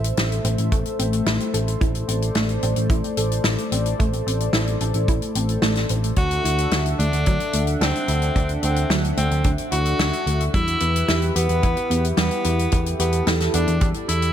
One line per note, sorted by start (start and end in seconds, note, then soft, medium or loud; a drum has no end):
0.00 0.11 A1 medium
0.00 6.14 A3 medium
0.00 10.50 A4 medium
0.00 6.14 C5 medium
0.00 1.77 E5 medium
0.04 closed hi-hat medium
0.17 0.38 A1 medium
0.17 0.36 E4 medium
0.17 snare loud
0.17 closed hi-hat medium
0.32 closed hi-hat medium
0.45 0.55 A1 loud
0.45 0.64 C4 medium
0.45 closed hi-hat loud
0.58 0.69 A1 medium
0.58 closed hi-hat medium
0.72 0.83 A3 loud
0.72 kick loud
0.72 closed hi-hat medium
0.85 closed hi-hat soft
0.99 1.20 A1 medium
0.99 1.18 C4 medium
0.99 closed hi-hat loud
1.13 closed hi-hat medium
1.26 1.37 A1 medium
1.26 1.52 E4 medium
1.26 snare loud
1.26 closed hi-hat medium
1.40 closed hi-hat medium
1.54 1.75 A1 medium
1.54 1.80 A4 medium
1.54 closed hi-hat medium
1.68 closed hi-hat medium
1.81 2.02 A1 medium
1.81 2.07 E4 medium
1.81 6.14 D5 medium
1.81 kick loud
1.81 closed hi-hat medium
1.95 closed hi-hat medium
2.08 2.29 A1 medium
2.08 2.27 C4 medium
2.08 closed hi-hat loud
2.22 closed hi-hat medium
2.35 2.57 A1 medium
2.35 2.55 A3 loud
2.35 snare loud
2.35 closed hi-hat medium
2.49 closed hi-hat medium
2.63 2.73 A1 loud
2.63 2.82 C4 medium
2.63 closed hi-hat medium
2.76 2.87 A1 medium
2.76 closed hi-hat medium
2.90 3.00 A1 medium
2.90 3.09 E4 medium
2.90 kick loud
2.90 closed hi-hat medium
3.04 closed hi-hat medium
3.17 3.38 A1 medium
3.17 3.36 A4 medium
3.17 closed hi-hat loud
3.32 closed hi-hat medium
3.44 3.55 A1 medium
3.44 3.64 E4 medium
3.44 snare loud
3.44 closed hi-hat medium
3.58 closed hi-hat medium
3.72 3.93 A1 medium
3.72 3.91 C4 medium
3.72 closed hi-hat loud
3.86 closed hi-hat medium
3.99 4.21 A1 medium
3.99 4.11 A3 loud
3.99 kick loud
3.99 closed hi-hat medium
4.13 closed hi-hat medium
4.27 4.47 A1 medium
4.27 4.46 C4 medium
4.27 closed hi-hat medium
4.40 closed hi-hat medium
4.53 4.75 A1 medium
4.53 4.80 E4 medium
4.53 snare loud
4.53 closed hi-hat medium
4.68 closed hi-hat soft
4.81 4.91 A1 loud
4.81 5.07 A4 medium
4.81 closed hi-hat medium
4.94 5.05 A1 medium
4.94 closed hi-hat medium
5.08 5.19 A1 medium
5.08 5.34 E4 loud
5.08 kick loud
5.08 closed hi-hat medium
5.22 closed hi-hat medium
5.35 5.56 A1 medium
5.35 5.55 C4 medium
5.35 closed hi-hat loud
5.49 closed hi-hat medium
5.62 5.84 A1 medium
5.62 5.82 A3 loud
5.62 snare loud
5.62 closed hi-hat medium
5.75 snare soft
5.75 closed hi-hat medium
5.89 6.11 A1 loud
5.89 6.09 C4 medium
5.89 closed hi-hat loud
6.04 closed hi-hat medium
6.16 6.38 D2 medium
6.16 6.36 D4 medium
6.16 10.50 D4 medium
6.16 6.88 F#4 loud
6.16 10.50 E5 medium
6.16 10.50 F#5 medium
6.16 kick loud
6.16 closed hi-hat medium
6.31 closed hi-hat medium
6.45 6.66 D2 medium
6.45 6.64 E4 medium
6.45 closed hi-hat medium
6.58 closed hi-hat medium
6.71 6.93 D2 medium
6.71 6.91 D4 medium
6.71 snare loud
6.71 closed hi-hat medium
6.86 closed hi-hat medium
6.99 7.10 D2 loud
6.99 7.18 A3 medium
6.99 7.70 D4 medium
6.99 closed hi-hat medium
7.13 7.23 D2 medium
7.13 closed hi-hat soft
7.26 7.37 D2 medium
7.26 7.38 F#3 loud
7.26 kick loud
7.26 closed hi-hat medium
7.40 closed hi-hat soft
7.53 7.75 D2 medium
7.53 7.73 A3 medium
7.53 closed hi-hat medium
7.67 closed hi-hat medium
7.81 7.91 D2 medium
7.81 8.52 C4 medium
7.81 8.07 D4 loud
7.81 snare loud
7.81 closed hi-hat medium
7.95 closed hi-hat medium
8.08 8.29 D2 medium
8.08 8.34 E4 medium
8.08 closed hi-hat medium
8.22 closed hi-hat soft
8.36 8.57 D2 medium
8.36 8.62 D4 medium
8.36 kick loud
8.36 closed hi-hat medium
8.49 closed hi-hat soft
8.63 8.84 D2 medium
8.63 8.82 A3 medium
8.63 8.98 C4 medium
8.63 closed hi-hat medium
8.76 closed hi-hat soft
8.90 9.11 D2 medium
8.90 9.09 F#3 loud
8.90 snare loud
8.90 closed hi-hat medium
9.04 closed hi-hat soft
9.17 9.28 D2 loud
9.17 9.36 A3 medium
9.17 9.52 C4 medium
9.17 closed hi-hat medium
9.31 9.42 D2 medium
9.31 closed hi-hat soft
9.44 9.55 D2 medium
9.44 9.64 D4 medium
9.44 kick loud
9.44 closed hi-hat medium
9.58 closed hi-hat medium
9.72 9.93 D2 medium
9.72 9.91 E4 medium
9.72 10.43 F#4 loud
9.72 closed hi-hat medium
9.85 closed hi-hat medium
9.99 10.10 D2 medium
9.99 10.18 D4 medium
9.99 snare loud
9.99 closed hi-hat medium
10.13 closed hi-hat medium
10.26 10.47 D2 medium
10.26 10.46 A3 medium
10.26 closed hi-hat medium
10.40 closed hi-hat soft
10.54 10.75 E2 medium
10.54 10.65 G3 loud
10.54 11.25 E4 loud
10.54 14.33 E4 medium
10.54 14.33 G4 medium
10.54 12.70 B4 medium
10.54 kick loud
10.54 closed hi-hat medium
10.68 closed hi-hat medium
10.80 11.02 E2 medium
10.80 11.00 B3 medium
10.80 closed hi-hat medium
10.96 closed hi-hat medium
11.08 11.29 E2 medium
11.08 11.34 E4 loud
11.08 snare loud
11.08 closed hi-hat medium
11.22 closed hi-hat soft
11.36 11.46 E2 loud
11.36 12.07 B3 medium
11.36 11.62 G4 medium
11.36 closed hi-hat loud
11.49 11.60 E2 medium
11.49 closed hi-hat soft
11.63 11.74 E2 medium
11.63 11.89 E4 loud
11.63 kick loud
11.63 closed hi-hat medium
11.77 closed hi-hat soft
11.90 12.11 E2 medium
11.90 12.09 B3 medium
11.90 closed hi-hat medium
12.05 closed hi-hat medium
12.17 12.28 E2 medium
12.17 12.36 G3 loud
12.17 12.89 B3 medium
12.17 snare loud
12.17 closed hi-hat medium
12.31 closed hi-hat medium
12.44 12.66 E2 medium
12.44 12.64 B3 medium
12.44 closed hi-hat medium
12.59 closed hi-hat medium
12.72 12.93 E2 medium
12.72 12.91 E4 medium
12.72 14.33 A4 medium
12.72 kick loud
12.72 closed hi-hat medium
12.86 closed hi-hat medium
12.99 13.20 E2 medium
12.99 13.34 B3 medium
12.99 13.18 G4 medium
12.99 closed hi-hat loud
13.12 closed hi-hat medium
13.27 13.48 E2 medium
13.27 13.46 E4 medium
13.27 snare loud
13.27 closed hi-hat medium
13.40 snare soft
13.40 closed hi-hat medium
13.54 13.64 E2 loud
13.54 13.73 B3 medium
13.54 13.89 D4 medium
13.54 closed hi-hat loud
13.68 13.78 E2 medium
13.68 closed hi-hat medium
13.81 13.92 E2 medium
13.81 13.92 G3 loud
13.81 kick loud
13.81 closed hi-hat medium
13.94 closed hi-hat medium
14.08 14.29 E2 medium
14.08 14.33 E4 medium
14.08 14.33 E4 loud
14.08 closed hi-hat loud
14.22 closed hi-hat medium